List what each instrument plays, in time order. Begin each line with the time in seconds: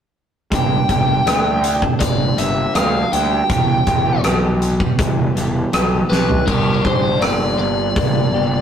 0.51 picked electric bass G1, clean electric guitar G3 A#3 D4 G4, lead electric guitar G5, kick, closed hi-hat
0.88 picked electric bass G1, clean electric guitar G3 A#3 D4 G4, kick, closed hi-hat
1.07 clean electric guitar A#3 D4 G4
1.25 picked electric bass D2, clean electric guitar G3 A#3 D4 G4, cross-stick, closed hi-hat
1.44 clean electric guitar A#3 D4 G4
1.64 closed hi-hat
1.81 clean electric guitar A#3 D4 G4, kick
2.00 picked electric bass G1, lead electric guitar D5, kick, closed hi-hat
2.36 picked electric bass G1, clean electric guitar G3 A#3 D4 G4, lead electric guitar E5, closed hi-hat
2.73 picked electric bass D2, clean electric guitar G3 A#3 D4 G4, lead electric guitar F5, cross-stick, closed hi-hat
2.91 clean electric guitar A#3 D4 G4
3.11 picked electric bass D2, clean electric guitar G3 A#3 D4 G4, lead electric guitar G5, closed hi-hat
3.31 clean electric guitar A#3 D4 G4
3.49 picked electric bass E1, clean electric guitar E2 B2 E3 G3 B3 G4, kick, closed hi-hat
3.86 picked electric bass E1, clean electric guitar E3 G3 B3 G4, kick, closed hi-hat
4.05 clean electric guitar E3 G3 B3 G4
4.22 picked electric bass B1, clean electric guitar E2 B2 E3 G3 B3 G4, cross-stick, closed hi-hat
4.42 clean electric guitar E3 G3 B3 G4
4.61 muted clean electric guitar stroke, closed hi-hat
4.80 clean electric guitar E3 G3 B3 G4, kick
4.99 picked electric bass E1, kick, closed hi-hat
5.35 picked electric bass E1, clean electric guitar E3 G3 B3 G4, closed hi-hat
5.72 picked electric bass B1, clean electric guitar E2 B2 E3 G3 B3 G4, cross-stick, closed hi-hat
5.90 clean electric guitar E3 G3 B3 G4
6.09 picked electric bass B1, clean electric guitar E3 G3 B3 G4, lead electric guitar B4, snare
6.28 clean electric guitar E3 G3 B3 G4, floor tom
6.47 picked electric bass G1, clean electric guitar G2, lead electric guitar A#4, kick, crash
6.84 picked electric bass G1, clean electric guitar G4, lead electric guitar C5, kick
7.21 picked electric bass G1, clean electric guitar A#3, lead electric guitar D5, cross-stick, open hi-hat
7.59 picked electric bass G1, clean electric guitar G3, lead electric guitar D5
7.96 picked electric bass G1, clean electric guitar A#3, kick, open hi-hat
8.32 picked electric bass G1, clean electric guitar G4